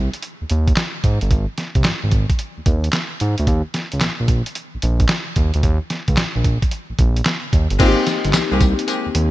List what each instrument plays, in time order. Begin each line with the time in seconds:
0.14 closed hi-hat
0.23 closed hi-hat
0.41 analog synth bass D#2
0.50 analog synth bass D#2, closed hi-hat
0.67 kick, closed hi-hat
0.76 snare, clap, closed hi-hat
1.04 analog synth bass G#2, kick, closed hi-hat
1.21 analog synth bass G1, closed hi-hat
1.31 analog synth bass G#1, kick, closed hi-hat
1.58 snare, closed hi-hat
1.75 analog synth bass C2, kick, closed hi-hat
1.84 analog synth bass G#1, snare, clap, closed hi-hat
2.03 analog synth bass G#1
2.11 kick, closed hi-hat
2.30 kick, closed hi-hat
2.39 closed hi-hat
2.58 analog synth bass D#2
2.66 analog synth bass D#2, kick, closed hi-hat
2.84 closed hi-hat
2.93 snare, clap, closed hi-hat
3.20 analog synth bass G#2, closed hi-hat
3.38 analog synth bass D2, closed hi-hat
3.47 analog synth bass D#2, kick, closed hi-hat
3.74 snare, closed hi-hat
3.92 analog synth bass C#2, closed hi-hat
4.01 analog synth bass A#1, snare, clap, closed hi-hat
4.20 analog synth bass A#1
4.28 kick, closed hi-hat
4.46 closed hi-hat
4.55 closed hi-hat
4.74 analog synth bass A#1
4.82 analog synth bass A#1, closed hi-hat
5.00 kick, closed hi-hat
5.09 snare, clap, closed hi-hat
5.36 analog synth bass D#2, kick, closed hi-hat
5.54 analog synth bass D2, closed hi-hat
5.63 analog synth bass D#2, kick, closed hi-hat
5.90 snare, closed hi-hat
6.08 analog synth bass C#2, kick, closed hi-hat
6.17 analog synth bass A#1, snare, clap, closed hi-hat
6.36 analog synth bass A#1
6.44 kick, closed hi-hat
6.62 kick, closed hi-hat
6.71 closed hi-hat
6.90 analog synth bass A#1
6.99 analog synth bass A#1, kick, closed hi-hat
7.17 closed hi-hat
7.25 snare, clap, closed hi-hat
7.53 analog synth bass D#2, kick, closed hi-hat
7.70 analog synth bass G1, closed hi-hat
7.79 analog synth bass G#1, horn section G#3 A#3 C4 G4, fm electric piano A#3 C4 D#4 F4, kick, closed hi-hat, crash, tambourine
7.88 fm electric piano G4
8.07 snare, closed hi-hat, tambourine
8.25 analog synth bass G1, closed hi-hat
8.33 analog synth bass C2, snare, clap, closed hi-hat, tambourine
8.51 analog synth bass C2, horn section G#3 A#3 C4 G4
8.61 kick, closed hi-hat, tambourine
8.79 closed hi-hat
8.88 horn section G#3 A#3 C4 G4, closed hi-hat, tambourine
9.06 analog synth bass D#2
9.15 analog synth bass D#2, closed hi-hat